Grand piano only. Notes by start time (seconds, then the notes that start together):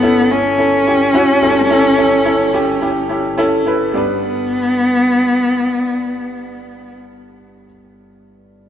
Already playing: G1 G2 C#4 E4 A4
0.02 C#4 E4 A4
0.30 C#4 E4 A4
0.58 C#4 E4 A4
0.86 C#4 E4 G4
1.14 C#4 E4 F#4
1.42 G1 G2 C#4 E4 A4
1.70 C#4 E4 A4
1.97 C#4 E4 A4
2.25 C#4 E4 A4
2.53 C#4 E4 G4
2.81 C#4 E4 G4
3.09 C#4 E4 G4
3.38 C#4 E4 A4
3.66 C#4 E4 B4
3.92 G2 G3 B3 D4
3.97 B4